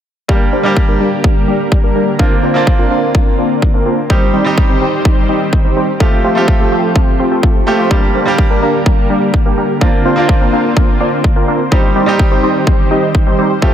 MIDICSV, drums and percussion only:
0, 0, Header, 1, 2, 480
1, 0, Start_track
1, 0, Key_signature, -2, "minor"
1, 0, Tempo, 476190
1, 292, Time_signature, 4, 2, 24, 8
1, 13849, End_track
2, 0, Start_track
2, 0, Title_t, "Drums"
2, 292, Note_on_c, 9, 36, 105
2, 393, Note_off_c, 9, 36, 0
2, 772, Note_on_c, 9, 36, 109
2, 872, Note_off_c, 9, 36, 0
2, 1251, Note_on_c, 9, 36, 103
2, 1352, Note_off_c, 9, 36, 0
2, 1732, Note_on_c, 9, 36, 108
2, 1832, Note_off_c, 9, 36, 0
2, 2212, Note_on_c, 9, 36, 104
2, 2312, Note_off_c, 9, 36, 0
2, 2692, Note_on_c, 9, 36, 114
2, 2793, Note_off_c, 9, 36, 0
2, 3172, Note_on_c, 9, 36, 111
2, 3273, Note_off_c, 9, 36, 0
2, 3652, Note_on_c, 9, 36, 109
2, 3753, Note_off_c, 9, 36, 0
2, 4133, Note_on_c, 9, 36, 109
2, 4233, Note_off_c, 9, 36, 0
2, 4612, Note_on_c, 9, 36, 120
2, 4713, Note_off_c, 9, 36, 0
2, 5092, Note_on_c, 9, 36, 117
2, 5193, Note_off_c, 9, 36, 0
2, 5572, Note_on_c, 9, 36, 112
2, 5673, Note_off_c, 9, 36, 0
2, 6052, Note_on_c, 9, 36, 108
2, 6153, Note_off_c, 9, 36, 0
2, 6532, Note_on_c, 9, 36, 113
2, 6632, Note_off_c, 9, 36, 0
2, 7012, Note_on_c, 9, 36, 107
2, 7112, Note_off_c, 9, 36, 0
2, 7492, Note_on_c, 9, 36, 112
2, 7593, Note_off_c, 9, 36, 0
2, 7972, Note_on_c, 9, 36, 100
2, 8073, Note_off_c, 9, 36, 0
2, 8452, Note_on_c, 9, 36, 111
2, 8553, Note_off_c, 9, 36, 0
2, 8932, Note_on_c, 9, 36, 105
2, 9033, Note_off_c, 9, 36, 0
2, 9412, Note_on_c, 9, 36, 109
2, 9513, Note_off_c, 9, 36, 0
2, 9892, Note_on_c, 9, 36, 97
2, 9993, Note_off_c, 9, 36, 0
2, 10372, Note_on_c, 9, 36, 110
2, 10473, Note_off_c, 9, 36, 0
2, 10852, Note_on_c, 9, 36, 101
2, 10953, Note_off_c, 9, 36, 0
2, 11332, Note_on_c, 9, 36, 104
2, 11433, Note_off_c, 9, 36, 0
2, 11812, Note_on_c, 9, 36, 101
2, 11913, Note_off_c, 9, 36, 0
2, 12292, Note_on_c, 9, 36, 105
2, 12393, Note_off_c, 9, 36, 0
2, 12772, Note_on_c, 9, 36, 106
2, 12873, Note_off_c, 9, 36, 0
2, 13252, Note_on_c, 9, 36, 105
2, 13353, Note_off_c, 9, 36, 0
2, 13732, Note_on_c, 9, 36, 99
2, 13833, Note_off_c, 9, 36, 0
2, 13849, End_track
0, 0, End_of_file